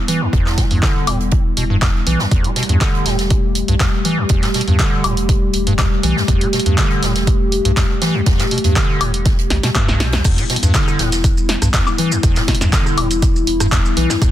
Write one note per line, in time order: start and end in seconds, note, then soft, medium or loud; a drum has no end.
0.00 10.21 G3 medium
0.00 2.28 B3 medium
0.00 2.30 E4 medium
0.08 0.23 E3 loud
0.08 closed hi-hat medium
0.08 open hi-hat loud
0.21 0.28 E2 medium
0.33 0.43 E1 loud
0.33 0.59 E2 loud
0.33 kick loud
0.33 closed hi-hat medium
0.46 snare soft
0.46 clap soft
0.58 0.65 B2 medium
0.58 kick medium
0.58 snare soft
0.58 closed hi-hat medium
0.58 open hi-hat medium
0.71 0.80 E2 medium
0.71 0.81 G2 medium
0.71 open hi-hat medium
0.83 1.09 D3 medium
0.83 kick loud
0.83 snare loud
0.83 clap loud
0.83 closed hi-hat medium
1.07 1.52 E1 medium
1.07 1.18 A2 medium
1.07 closed hi-hat medium
1.07 open hi-hat loud
1.07 high woodblock medium
1.20 closed hi-hat soft
1.31 kick loud
1.31 closed hi-hat medium
1.57 2.02 E1 medium
1.57 1.64 B2 medium
1.57 closed hi-hat medium
1.57 open hi-hat loud
1.70 1.77 G2 medium
1.81 1.89 E2 medium
1.81 kick loud
1.81 snare loud
1.81 clap loud
1.81 closed hi-hat medium
1.81 high woodblock medium
2.07 2.16 B1 medium
2.07 2.21 E3 medium
2.07 closed hi-hat medium
2.07 open hi-hat loud
2.19 2.26 E2 medium
2.19 snare soft
2.31 2.41 E1 loud
2.31 2.46 E2 loud
2.31 10.21 A3 medium
2.31 10.23 G4 medium
2.31 kick loud
2.31 closed hi-hat medium
2.44 2.51 B2 medium
2.44 closed hi-hat soft
2.56 2.63 B2 medium
2.56 snare soft
2.56 closed hi-hat medium
2.56 open hi-hat loud
2.63 closed hi-hat medium
2.69 2.78 E2 medium
2.69 2.79 G2 medium
2.69 closed hi-hat soft
2.81 3.07 D3 loud
2.81 kick loud
2.81 snare loud
2.81 clap loud
2.81 closed hi-hat medium
2.95 closed hi-hat soft
3.06 3.63 E1 medium
3.06 3.17 A2 medium
3.06 snare medium
3.06 closed hi-hat medium
3.06 open hi-hat loud
3.19 snare soft
3.19 closed hi-hat soft
3.30 kick loud
3.30 closed hi-hat medium
3.55 closed hi-hat medium
3.55 open hi-hat loud
3.68 3.77 B1 loud
3.68 3.75 G2 loud
3.68 closed hi-hat soft
3.80 3.87 E2 medium
3.80 kick loud
3.80 snare loud
3.80 clap loud
3.80 closed hi-hat medium
4.05 4.20 E3 loud
4.05 closed hi-hat medium
4.05 open hi-hat loud
4.18 4.25 E2 medium
4.29 4.39 E1 loud
4.29 4.44 E2 loud
4.29 kick loud
4.29 closed hi-hat medium
4.43 4.49 B2 medium
4.43 snare medium
4.43 clap soft
4.43 closed hi-hat soft
4.54 4.62 B2 medium
4.54 snare soft
4.54 closed hi-hat medium
4.54 open hi-hat medium
4.61 closed hi-hat medium
4.68 4.76 E2 medium
4.68 4.77 G2 medium
4.68 open hi-hat medium
4.79 5.06 D3 medium
4.79 kick loud
4.79 snare loud
4.79 clap loud
4.79 closed hi-hat medium
5.04 5.49 E1 medium
5.04 5.15 A2 medium
5.04 closed hi-hat medium
5.04 open hi-hat medium
5.04 high woodblock medium
5.17 closed hi-hat soft
5.29 kick loud
5.29 closed hi-hat medium
5.53 5.99 E1 medium
5.53 closed hi-hat medium
5.53 open hi-hat medium
5.67 5.73 G2 medium
5.67 closed hi-hat soft
5.78 5.86 E2 loud
5.78 kick loud
5.78 snare loud
5.78 clap loud
5.78 closed hi-hat medium
5.78 high woodblock medium
6.03 6.13 B1 medium
6.03 6.18 E3 loud
6.03 closed hi-hat medium
6.03 open hi-hat loud
6.16 6.23 E2 medium
6.16 snare soft
6.28 6.38 E1 loud
6.28 6.43 E2 loud
6.28 kick loud
6.28 closed hi-hat medium
6.41 6.48 B2 medium
6.41 closed hi-hat soft
6.53 6.60 B2 medium
6.53 snare medium
6.53 closed hi-hat medium
6.53 open hi-hat medium
6.60 closed hi-hat medium
6.66 6.75 E2 medium
6.66 6.76 G2 medium
6.66 closed hi-hat medium
6.78 7.04 D3 loud
6.78 kick loud
6.78 snare loud
6.78 clap loud
6.78 closed hi-hat medium
6.90 closed hi-hat soft
7.02 7.60 E1 medium
7.02 7.13 A2 medium
7.02 snare medium
7.02 closed hi-hat medium
7.02 open hi-hat medium
7.16 snare soft
7.16 closed hi-hat medium
7.27 kick loud
7.27 closed hi-hat medium
7.52 closed hi-hat medium
7.52 open hi-hat medium
7.65 7.74 B1 loud
7.65 7.72 G2 loud
7.65 closed hi-hat medium
7.77 7.84 E2 loud
7.77 kick loud
7.77 snare loud
7.77 clap loud
7.77 closed hi-hat medium
8.02 8.16 E3 loud
8.02 snare medium
8.02 closed hi-hat medium
8.02 open hi-hat loud
8.15 8.21 E2 medium
8.26 8.36 E1 loud
8.26 8.41 E2 loud
8.26 kick loud
8.26 snare loud
8.26 closed hi-hat medium
8.39 8.46 B2 medium
8.39 snare loud
8.39 clap soft
8.39 closed hi-hat medium
8.39 closed hi-hat soft
8.51 8.59 B2 medium
8.51 open hi-hat medium
8.58 closed hi-hat medium
8.64 8.73 E2 medium
8.64 8.74 G2 medium
8.64 closed hi-hat medium
8.64 open hi-hat medium
8.76 9.02 D3 loud
8.76 kick loud
8.76 snare loud
8.76 clap loud
8.76 closed hi-hat medium
9.00 9.46 E1 medium
9.00 9.12 A2 medium
9.00 closed hi-hat medium
9.00 open hi-hat medium
9.00 high woodblock medium
9.14 closed hi-hat medium
9.25 kick loud
9.25 snare soft
9.25 closed hi-hat medium
9.39 closed hi-hat medium
9.50 9.60 A1 medium
9.50 9.58 D2 medium
9.50 snare medium
9.50 open hi-hat medium
9.63 9.70 B2 loud
9.63 snare medium
9.63 snare soft
9.63 closed hi-hat medium
9.75 10.02 G2 medium
9.75 kick loud
9.75 snare medium
9.75 clap loud
9.75 closed hi-hat medium
9.75 high woodblock medium
9.88 10.20 B1 medium
9.88 snare medium
10.00 10.15 B2 medium
10.00 snare soft
10.00 snare medium
10.00 closed hi-hat medium
10.00 open hi-hat loud
10.12 10.23 D2 medium
10.12 snare soft
10.12 snare medium
10.12 closed hi-hat medium
10.24 10.35 E1 loud
10.24 10.39 E2 loud
10.24 14.31 G3 medium
10.24 14.31 B3 medium
10.24 14.31 E4 medium
10.24 kick loud
10.24 cross-stick medium
10.24 closed hi-hat medium
10.24 crash loud
10.24 shaker medium
10.38 10.44 B2 medium
10.38 closed hi-hat medium
10.38 shaker soft
10.50 10.57 B2 medium
10.50 snare medium
10.50 closed hi-hat medium
10.50 open hi-hat loud
10.56 closed hi-hat medium
10.63 10.71 E2 loud
10.63 10.72 G2 medium
10.63 closed hi-hat medium
10.63 shaker medium
10.74 11.01 D3 loud
10.74 kick loud
10.74 snare loud
10.74 clap loud
10.74 closed hi-hat medium
10.74 shaker medium
10.87 cross-stick soft
10.87 closed hi-hat soft
10.87 shaker soft
10.99 11.57 E1 medium
10.99 11.10 A2 medium
10.99 snare soft
10.99 closed hi-hat medium
10.99 open hi-hat loud
11.12 snare soft
11.12 closed hi-hat medium
11.12 shaker medium
11.24 kick loud
11.24 closed hi-hat medium
11.24 shaker medium
11.37 shaker soft
11.49 snare medium
11.49 closed hi-hat medium
11.49 open hi-hat loud
11.62 11.71 B1 loud
11.62 11.68 G2 loud
11.62 cross-stick medium
11.62 closed hi-hat medium
11.62 shaker medium
11.74 11.81 E2 loud
11.74 kick loud
11.74 snare loud
11.74 clap loud
11.74 closed hi-hat medium
11.74 shaker medium
11.87 snare soft
11.87 high woodblock medium
11.87 shaker soft
11.98 12.13 E3 loud
11.98 closed hi-hat medium
11.98 open hi-hat loud
12.12 12.18 E2 medium
12.12 shaker medium
12.23 12.33 E1 loud
12.23 12.38 E2 loud
12.23 kick loud
12.23 cross-stick medium
12.23 closed hi-hat medium
12.23 shaker medium
12.36 12.43 B2 medium
12.36 snare medium
12.36 clap soft
12.36 closed hi-hat soft
12.36 shaker soft
12.47 12.55 B2 medium
12.47 kick medium
12.47 snare soft
12.47 snare medium
12.47 closed hi-hat medium
12.47 open hi-hat loud
12.55 closed hi-hat medium
12.61 12.70 E2 medium
12.61 12.71 G2 medium
12.61 snare medium
12.61 open hi-hat medium
12.61 shaker medium
12.73 12.99 D3 loud
12.73 kick loud
12.73 snare loud
12.73 clap loud
12.73 closed hi-hat medium
12.73 shaker medium
12.86 cross-stick soft
12.86 shaker soft
12.97 13.42 E1 medium
12.97 13.08 A2 medium
12.97 closed hi-hat medium
12.97 open hi-hat loud
12.97 high woodblock medium
13.10 closed hi-hat soft
13.10 closed hi-hat medium
13.10 shaker medium
13.22 kick loud
13.22 closed hi-hat medium
13.22 shaker medium
13.36 shaker soft
13.47 13.92 E1 medium
13.47 closed hi-hat medium
13.47 open hi-hat loud
13.60 13.67 G2 loud
13.60 cross-stick medium
13.60 closed hi-hat medium
13.60 shaker medium
13.71 13.79 E2 loud
13.71 kick loud
13.71 snare loud
13.71 clap loud
13.71 closed hi-hat medium
13.71 high woodblock medium
13.71 shaker medium
13.85 shaker soft
13.97 14.07 B1 medium
13.97 14.11 E3 loud
13.97 closed hi-hat medium
13.97 open hi-hat loud
14.10 14.16 E2 medium
14.10 snare soft
14.10 snare medium
14.10 shaker medium
14.22 14.31 E1 loud
14.22 14.31 E2 loud
14.22 kick loud
14.22 cross-stick medium
14.22 closed hi-hat medium
14.22 shaker medium